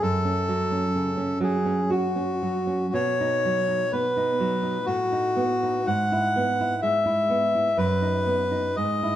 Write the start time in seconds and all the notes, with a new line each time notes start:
0.02 F#2 A4
0.25 C#4
0.48 F#3
0.72 C#4
0.95 C#3
1.17 C#4
1.40 F#3 G#4
1.66 C#4
1.90 F#4
2.16 C#4
2.42 F#3
2.67 C#4
2.94 B2 C#5
3.21 D#4
3.45 F#3
3.68 D#4
3.92 B3 B4
4.17 D#4
4.40 F#3
4.63 D#4
4.86 A2 F#4
5.12 D#4
5.36 B3
5.63 D#4
5.87 G#2 F#5
6.12 E4
6.36 B3
6.60 E4
6.82 G#3 E5
7.06 E4
7.30 B3
7.55 E4
7.77 F#2 B4
8.02 D#4
8.26 B3
8.51 D#4
8.76 G#2 D#5
9.03 E4